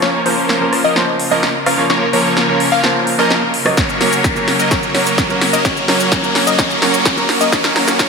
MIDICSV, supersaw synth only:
0, 0, Header, 1, 2, 480
1, 0, Start_track
1, 0, Key_signature, -5, "minor"
1, 0, Tempo, 468750
1, 25, Time_signature, 4, 2, 24, 8
1, 8282, End_track
2, 0, Start_track
2, 0, Title_t, "Supersaw synth"
2, 0, Program_c, 0, 81
2, 24, Note_on_c, 0, 58, 88
2, 24, Note_on_c, 0, 61, 84
2, 24, Note_on_c, 0, 70, 88
2, 24, Note_on_c, 0, 73, 104
2, 25, Note_on_c, 0, 53, 93
2, 235, Note_off_c, 0, 73, 0
2, 236, Note_off_c, 0, 53, 0
2, 236, Note_off_c, 0, 58, 0
2, 236, Note_off_c, 0, 61, 0
2, 236, Note_off_c, 0, 70, 0
2, 264, Note_on_c, 0, 53, 82
2, 264, Note_on_c, 0, 58, 74
2, 264, Note_on_c, 0, 61, 71
2, 264, Note_on_c, 0, 70, 78
2, 264, Note_on_c, 0, 72, 87
2, 835, Note_off_c, 0, 53, 0
2, 835, Note_off_c, 0, 58, 0
2, 835, Note_off_c, 0, 61, 0
2, 835, Note_off_c, 0, 70, 0
2, 835, Note_off_c, 0, 72, 0
2, 863, Note_on_c, 0, 70, 81
2, 864, Note_on_c, 0, 53, 86
2, 864, Note_on_c, 0, 58, 83
2, 864, Note_on_c, 0, 61, 77
2, 864, Note_on_c, 0, 75, 96
2, 1037, Note_off_c, 0, 53, 0
2, 1037, Note_off_c, 0, 58, 0
2, 1037, Note_off_c, 0, 61, 0
2, 1037, Note_off_c, 0, 70, 0
2, 1037, Note_off_c, 0, 75, 0
2, 1344, Note_on_c, 0, 53, 87
2, 1344, Note_on_c, 0, 58, 79
2, 1344, Note_on_c, 0, 61, 78
2, 1344, Note_on_c, 0, 70, 81
2, 1344, Note_on_c, 0, 75, 101
2, 1517, Note_off_c, 0, 61, 0
2, 1518, Note_off_c, 0, 53, 0
2, 1518, Note_off_c, 0, 58, 0
2, 1518, Note_off_c, 0, 70, 0
2, 1518, Note_off_c, 0, 75, 0
2, 1705, Note_on_c, 0, 53, 74
2, 1705, Note_on_c, 0, 58, 69
2, 1705, Note_on_c, 0, 61, 69
2, 1705, Note_on_c, 0, 70, 69
2, 1705, Note_on_c, 0, 77, 80
2, 1878, Note_off_c, 0, 53, 0
2, 1878, Note_off_c, 0, 58, 0
2, 1878, Note_off_c, 0, 61, 0
2, 1878, Note_off_c, 0, 70, 0
2, 1878, Note_off_c, 0, 77, 0
2, 1944, Note_on_c, 0, 53, 78
2, 1944, Note_on_c, 0, 61, 73
2, 1944, Note_on_c, 0, 70, 74
2, 1944, Note_on_c, 0, 73, 89
2, 1945, Note_on_c, 0, 58, 76
2, 2118, Note_off_c, 0, 53, 0
2, 2118, Note_off_c, 0, 58, 0
2, 2118, Note_off_c, 0, 61, 0
2, 2118, Note_off_c, 0, 70, 0
2, 2118, Note_off_c, 0, 73, 0
2, 2185, Note_on_c, 0, 53, 75
2, 2185, Note_on_c, 0, 58, 68
2, 2185, Note_on_c, 0, 61, 69
2, 2185, Note_on_c, 0, 70, 72
2, 2185, Note_on_c, 0, 73, 85
2, 2756, Note_off_c, 0, 53, 0
2, 2756, Note_off_c, 0, 58, 0
2, 2756, Note_off_c, 0, 61, 0
2, 2756, Note_off_c, 0, 70, 0
2, 2756, Note_off_c, 0, 73, 0
2, 2784, Note_on_c, 0, 53, 93
2, 2784, Note_on_c, 0, 58, 86
2, 2784, Note_on_c, 0, 61, 87
2, 2784, Note_on_c, 0, 70, 85
2, 2784, Note_on_c, 0, 77, 104
2, 2957, Note_off_c, 0, 61, 0
2, 2958, Note_off_c, 0, 53, 0
2, 2958, Note_off_c, 0, 58, 0
2, 2958, Note_off_c, 0, 70, 0
2, 2958, Note_off_c, 0, 77, 0
2, 3264, Note_on_c, 0, 53, 100
2, 3265, Note_on_c, 0, 58, 89
2, 3265, Note_on_c, 0, 61, 87
2, 3265, Note_on_c, 0, 70, 92
2, 3265, Note_on_c, 0, 75, 105
2, 3438, Note_off_c, 0, 53, 0
2, 3438, Note_off_c, 0, 58, 0
2, 3438, Note_off_c, 0, 61, 0
2, 3438, Note_off_c, 0, 70, 0
2, 3438, Note_off_c, 0, 75, 0
2, 3864, Note_on_c, 0, 54, 87
2, 3864, Note_on_c, 0, 58, 80
2, 3864, Note_on_c, 0, 61, 76
2, 3864, Note_on_c, 0, 70, 79
2, 3864, Note_on_c, 0, 73, 96
2, 4075, Note_off_c, 0, 54, 0
2, 4075, Note_off_c, 0, 61, 0
2, 4075, Note_off_c, 0, 70, 0
2, 4075, Note_off_c, 0, 73, 0
2, 4076, Note_off_c, 0, 58, 0
2, 4103, Note_on_c, 0, 58, 70
2, 4103, Note_on_c, 0, 61, 71
2, 4103, Note_on_c, 0, 70, 70
2, 4104, Note_on_c, 0, 54, 77
2, 4104, Note_on_c, 0, 73, 83
2, 4675, Note_off_c, 0, 54, 0
2, 4675, Note_off_c, 0, 58, 0
2, 4675, Note_off_c, 0, 61, 0
2, 4675, Note_off_c, 0, 70, 0
2, 4675, Note_off_c, 0, 73, 0
2, 4703, Note_on_c, 0, 54, 82
2, 4703, Note_on_c, 0, 58, 76
2, 4703, Note_on_c, 0, 61, 75
2, 4703, Note_on_c, 0, 70, 75
2, 4703, Note_on_c, 0, 75, 90
2, 4805, Note_off_c, 0, 54, 0
2, 4805, Note_off_c, 0, 58, 0
2, 4805, Note_off_c, 0, 61, 0
2, 4805, Note_off_c, 0, 70, 0
2, 4805, Note_off_c, 0, 75, 0
2, 4823, Note_on_c, 0, 54, 89
2, 4823, Note_on_c, 0, 58, 76
2, 4823, Note_on_c, 0, 61, 79
2, 4823, Note_on_c, 0, 70, 79
2, 4823, Note_on_c, 0, 73, 91
2, 5035, Note_off_c, 0, 54, 0
2, 5035, Note_off_c, 0, 58, 0
2, 5035, Note_off_c, 0, 61, 0
2, 5035, Note_off_c, 0, 70, 0
2, 5035, Note_off_c, 0, 73, 0
2, 5062, Note_on_c, 0, 58, 72
2, 5062, Note_on_c, 0, 73, 87
2, 5063, Note_on_c, 0, 54, 79
2, 5063, Note_on_c, 0, 61, 72
2, 5063, Note_on_c, 0, 70, 74
2, 5634, Note_off_c, 0, 58, 0
2, 5634, Note_off_c, 0, 73, 0
2, 5635, Note_off_c, 0, 54, 0
2, 5635, Note_off_c, 0, 61, 0
2, 5635, Note_off_c, 0, 70, 0
2, 5663, Note_on_c, 0, 54, 84
2, 5663, Note_on_c, 0, 58, 76
2, 5663, Note_on_c, 0, 61, 73
2, 5663, Note_on_c, 0, 70, 74
2, 5663, Note_on_c, 0, 75, 93
2, 5764, Note_off_c, 0, 58, 0
2, 5764, Note_off_c, 0, 61, 0
2, 5764, Note_off_c, 0, 75, 0
2, 5765, Note_off_c, 0, 54, 0
2, 5765, Note_off_c, 0, 70, 0
2, 5783, Note_on_c, 0, 54, 91
2, 5783, Note_on_c, 0, 58, 79
2, 5783, Note_on_c, 0, 61, 82
2, 5783, Note_on_c, 0, 73, 104
2, 5995, Note_off_c, 0, 54, 0
2, 5995, Note_off_c, 0, 58, 0
2, 5995, Note_off_c, 0, 61, 0
2, 5995, Note_off_c, 0, 73, 0
2, 6024, Note_on_c, 0, 54, 82
2, 6024, Note_on_c, 0, 58, 72
2, 6024, Note_on_c, 0, 61, 70
2, 6024, Note_on_c, 0, 70, 75
2, 6024, Note_on_c, 0, 73, 90
2, 6595, Note_off_c, 0, 54, 0
2, 6595, Note_off_c, 0, 58, 0
2, 6595, Note_off_c, 0, 61, 0
2, 6595, Note_off_c, 0, 70, 0
2, 6595, Note_off_c, 0, 73, 0
2, 6624, Note_on_c, 0, 54, 82
2, 6624, Note_on_c, 0, 58, 75
2, 6624, Note_on_c, 0, 61, 77
2, 6624, Note_on_c, 0, 70, 79
2, 6624, Note_on_c, 0, 75, 94
2, 6725, Note_off_c, 0, 54, 0
2, 6725, Note_off_c, 0, 58, 0
2, 6725, Note_off_c, 0, 61, 0
2, 6725, Note_off_c, 0, 70, 0
2, 6725, Note_off_c, 0, 75, 0
2, 6744, Note_on_c, 0, 54, 92
2, 6744, Note_on_c, 0, 58, 85
2, 6744, Note_on_c, 0, 61, 82
2, 6744, Note_on_c, 0, 70, 82
2, 6744, Note_on_c, 0, 73, 100
2, 6955, Note_off_c, 0, 54, 0
2, 6955, Note_off_c, 0, 58, 0
2, 6955, Note_off_c, 0, 61, 0
2, 6955, Note_off_c, 0, 70, 0
2, 6955, Note_off_c, 0, 73, 0
2, 6984, Note_on_c, 0, 54, 84
2, 6984, Note_on_c, 0, 58, 76
2, 6984, Note_on_c, 0, 61, 77
2, 6984, Note_on_c, 0, 70, 75
2, 6984, Note_on_c, 0, 73, 91
2, 7555, Note_off_c, 0, 54, 0
2, 7555, Note_off_c, 0, 58, 0
2, 7555, Note_off_c, 0, 61, 0
2, 7555, Note_off_c, 0, 70, 0
2, 7555, Note_off_c, 0, 73, 0
2, 7583, Note_on_c, 0, 54, 89
2, 7583, Note_on_c, 0, 58, 83
2, 7583, Note_on_c, 0, 61, 82
2, 7583, Note_on_c, 0, 70, 82
2, 7583, Note_on_c, 0, 75, 95
2, 7684, Note_off_c, 0, 54, 0
2, 7684, Note_off_c, 0, 58, 0
2, 7684, Note_off_c, 0, 61, 0
2, 7685, Note_off_c, 0, 70, 0
2, 7685, Note_off_c, 0, 75, 0
2, 7703, Note_on_c, 0, 54, 92
2, 7703, Note_on_c, 0, 70, 85
2, 7703, Note_on_c, 0, 73, 103
2, 7704, Note_on_c, 0, 58, 85
2, 7704, Note_on_c, 0, 61, 86
2, 7915, Note_off_c, 0, 54, 0
2, 7915, Note_off_c, 0, 58, 0
2, 7915, Note_off_c, 0, 61, 0
2, 7915, Note_off_c, 0, 70, 0
2, 7915, Note_off_c, 0, 73, 0
2, 7944, Note_on_c, 0, 54, 82
2, 7944, Note_on_c, 0, 58, 74
2, 7944, Note_on_c, 0, 61, 74
2, 7944, Note_on_c, 0, 70, 72
2, 7944, Note_on_c, 0, 73, 87
2, 8165, Note_off_c, 0, 54, 0
2, 8165, Note_off_c, 0, 58, 0
2, 8165, Note_off_c, 0, 61, 0
2, 8165, Note_off_c, 0, 70, 0
2, 8165, Note_off_c, 0, 73, 0
2, 8183, Note_on_c, 0, 58, 88
2, 8183, Note_on_c, 0, 70, 83
2, 8183, Note_on_c, 0, 73, 106
2, 8184, Note_on_c, 0, 54, 94
2, 8184, Note_on_c, 0, 61, 82
2, 8282, Note_off_c, 0, 54, 0
2, 8282, Note_off_c, 0, 58, 0
2, 8282, Note_off_c, 0, 61, 0
2, 8282, Note_off_c, 0, 70, 0
2, 8282, Note_off_c, 0, 73, 0
2, 8282, End_track
0, 0, End_of_file